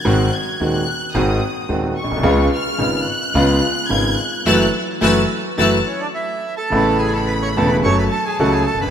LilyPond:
<<
  \new Staff \with { instrumentName = "Violin section" } { \time 4/4 \key fis \minor \tempo 4 = 108 fis'''8 gis'''8 fis'''4 dis'''4 r8 cis'''8~ | cis'''8 eis'''4 fis'''4. gis'''8 fis'''8 | <e''' fis''' a'''>8 r8 <e''' fis''' a'''>8 r8 <e''' fis''' a'''>8 r4. | \key a \major b''2 a''2 | }
  \new Staff \with { instrumentName = "Bandoneon" } { \time 4/4 \key fis \minor r1 | r1 | r2 r8 <cis' cis''>16 <d' d''>16 <e' e''>8. <a' a''>16~ | \key a \major <a' a''>8 <gis' gis''>16 <a' a''>16 <b' b''>16 <cis'' cis'''>16 <a' a''>16 <b' b''>16 <cis'' cis'''>16 <b' b''>16 <a' a''>16 <gis' gis''>16 <fis' fis''>16 <gis' gis''>16 <a' a''>16 <b' b''>16 | }
  \new Staff \with { instrumentName = "String section" } { \time 4/4 \key fis \minor <gis bis fis'>8 r8 <gis bis fis'>8 r8 <gis bis fis'>8 r8 <gis bis fis'>8 r8 | <b cis' eis'>8 r8 <b cis' eis'>8 r8 <b cis' eis'>8 r8 <b cis' eis'>8 r8 | <cis' e' fis'>8 r8 <cis' e' fis'>8 r8 <cis' e' fis'>8 r4. | \key a \major r1 | }
  \new Staff \with { instrumentName = "Grand piano" } { \clef bass \time 4/4 \key fis \minor <gis,, gis, dis gis bis fis'>8 r8 <dis,, dis, dis gis bis fis'>8 r8 <gis,, gis, dis gis bis fis'>8 r8 <dis,, dis, dis gis bis fis'>8 r32 ais,,32 b,,32 bis,,32 | <cis, cis gis b eis'>8 r8 <gis,, gis, cis gis b eis'>8 r8 <cis, cis gis b eis'>8 r8 <gis,, gis, cis gis b eis'>8 r8 | <e fis a>8 r8 <e fis a>8 r8 <e fis a>8 r4. | \key a \major <a,, a, cis a b e'>4. <e,, e, cis a b e'>8 <fis, fis a cis' a'>8 r8 <cis, cis fis a cis' a'>8 r32 fis,,32 g,,32 r32 | }
  \new Staff \with { instrumentName = "Upright bass" } { \clef bass \time 4/4 \key fis \minor gis,,16. r8 r32 dis,16. r8 r32 gis,,16. r8 r32 dis,16. r16 ais,,32 b,,32 bis,,32 | cis,16. r8 r32 gis,,16. r8 r32 cis,16. r8 r32 gis,,16. r8 r32 | fis,,16. r8 r32 fis,,16. r8 r32 fis,,16. r4. r32 | \key a \major a,,4~ a,,16. r32 e,,16. r32 fis,,16. r8 r32 cis,16. r16 fis,,32 g,,32 gis,,32 | }
>>